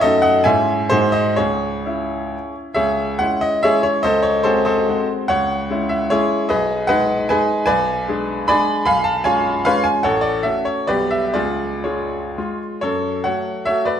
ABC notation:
X:1
M:3/4
L:1/8
Q:1/4=144
K:C#m
V:1 name="Grand piano"
[Ad] [df] [eg]2 [G^B] [Bd] | [Gc]4- [Gc] z | [Gce]2 f d [Gce] c | [A^Bd] c [GAB] [ABd]2 z |
[cf]3 e [EGc]2 | [GBd]2 [Bdf]2 [Bdg]2 | [K:F#m] [Bdg]4 [dgb]2 | [^egb] a [ceg]2 [Bce] g |
[Acf] d e c [=GBd] e | [^EGd]2 [EGc]3 z | [Ac]2 [cf]2 [ce] [Bd] |]
V:2 name="Grand piano"
[F,,A,DF]2 [G,,G,CE]2 [G,,G,DF]2 | C,,2 [CE]4 | C,,2 [G,CE]2 [G,CE]2 | C,,2 [G,^B,F]2 [G,B,F]2 |
C,,2 [G,CE]2 [G,C]2 | B,,,2 [G,DG]2 [G,DG]2 | [K:F#m] B,,,2 [G,DG]2 [G,DG]2 | B,,,2 [G,C^E]2 [G,CE]2 |
A,,,2 [A,CF]2 [B,,,=G,B,]2 | C,,2 G,2 [G,^E]2 | F,,2 [F,A,F]2 [F,A,F]2 |]